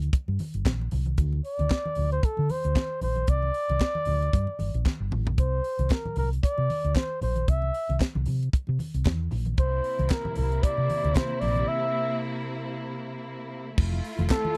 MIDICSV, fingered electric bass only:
0, 0, Header, 1, 3, 480
1, 0, Start_track
1, 0, Tempo, 524934
1, 1082, Time_signature, 4, 2, 24, 8
1, 13325, End_track
2, 0, Start_track
2, 0, Title_t, "Fingered electric bass"
2, 0, Program_c, 0, 33
2, 257, Note_on_c, 0, 43, 85
2, 342, Note_off_c, 0, 43, 0
2, 498, Note_on_c, 0, 31, 79
2, 582, Note_off_c, 0, 31, 0
2, 602, Note_on_c, 0, 34, 84
2, 796, Note_off_c, 0, 34, 0
2, 850, Note_on_c, 0, 36, 86
2, 1041, Note_off_c, 0, 36, 0
2, 1081, Note_on_c, 0, 38, 111
2, 1275, Note_off_c, 0, 38, 0
2, 1457, Note_on_c, 0, 38, 93
2, 1542, Note_off_c, 0, 38, 0
2, 1808, Note_on_c, 0, 38, 89
2, 1999, Note_off_c, 0, 38, 0
2, 2183, Note_on_c, 0, 50, 82
2, 2265, Note_off_c, 0, 50, 0
2, 2421, Note_on_c, 0, 38, 83
2, 2504, Note_off_c, 0, 38, 0
2, 2769, Note_on_c, 0, 34, 72
2, 2960, Note_off_c, 0, 34, 0
2, 3002, Note_on_c, 0, 36, 93
2, 3196, Note_off_c, 0, 36, 0
2, 3380, Note_on_c, 0, 36, 84
2, 3464, Note_off_c, 0, 36, 0
2, 3724, Note_on_c, 0, 38, 88
2, 3917, Note_off_c, 0, 38, 0
2, 3965, Note_on_c, 0, 43, 96
2, 4072, Note_off_c, 0, 43, 0
2, 4202, Note_on_c, 0, 31, 68
2, 4311, Note_off_c, 0, 31, 0
2, 4336, Note_on_c, 0, 34, 95
2, 4421, Note_off_c, 0, 34, 0
2, 4574, Note_on_c, 0, 31, 79
2, 4679, Note_off_c, 0, 31, 0
2, 4679, Note_on_c, 0, 33, 84
2, 4818, Note_off_c, 0, 33, 0
2, 4818, Note_on_c, 0, 34, 78
2, 4903, Note_off_c, 0, 34, 0
2, 4920, Note_on_c, 0, 36, 85
2, 5115, Note_off_c, 0, 36, 0
2, 5295, Note_on_c, 0, 36, 91
2, 5381, Note_off_c, 0, 36, 0
2, 5639, Note_on_c, 0, 36, 91
2, 5834, Note_off_c, 0, 36, 0
2, 6018, Note_on_c, 0, 48, 85
2, 6103, Note_off_c, 0, 48, 0
2, 6260, Note_on_c, 0, 38, 85
2, 6344, Note_off_c, 0, 38, 0
2, 6606, Note_on_c, 0, 34, 76
2, 6798, Note_off_c, 0, 34, 0
2, 6843, Note_on_c, 0, 36, 94
2, 7037, Note_off_c, 0, 36, 0
2, 7219, Note_on_c, 0, 36, 89
2, 7304, Note_off_c, 0, 36, 0
2, 7459, Note_on_c, 0, 36, 98
2, 7544, Note_off_c, 0, 36, 0
2, 7568, Note_on_c, 0, 48, 84
2, 7760, Note_off_c, 0, 48, 0
2, 7942, Note_on_c, 0, 48, 99
2, 8026, Note_off_c, 0, 48, 0
2, 8178, Note_on_c, 0, 36, 82
2, 8263, Note_off_c, 0, 36, 0
2, 8284, Note_on_c, 0, 40, 92
2, 8477, Note_off_c, 0, 40, 0
2, 8529, Note_on_c, 0, 34, 91
2, 8720, Note_off_c, 0, 34, 0
2, 8760, Note_on_c, 0, 36, 102
2, 8955, Note_off_c, 0, 36, 0
2, 9138, Note_on_c, 0, 36, 102
2, 9223, Note_off_c, 0, 36, 0
2, 9488, Note_on_c, 0, 36, 90
2, 9680, Note_off_c, 0, 36, 0
2, 9856, Note_on_c, 0, 48, 80
2, 9942, Note_off_c, 0, 48, 0
2, 10096, Note_on_c, 0, 38, 84
2, 10182, Note_off_c, 0, 38, 0
2, 10444, Note_on_c, 0, 34, 85
2, 10638, Note_off_c, 0, 34, 0
2, 12603, Note_on_c, 0, 29, 100
2, 12796, Note_off_c, 0, 29, 0
2, 12971, Note_on_c, 0, 29, 93
2, 13058, Note_off_c, 0, 29, 0
2, 13325, End_track
3, 0, Start_track
3, 0, Title_t, "Muted fingered electric bass strokes"
3, 2041, Note_on_c, 9, 29, 52
3, 2133, Note_off_c, 9, 29, 0
3, 5885, Note_on_c, 9, 29, 47
3, 5977, Note_off_c, 9, 29, 0
3, 7806, Note_on_c, 9, 29, 51
3, 7898, Note_off_c, 9, 29, 0
3, 9725, Note_on_c, 9, 29, 52
3, 9817, Note_off_c, 9, 29, 0
3, 13325, End_track
0, 0, End_of_file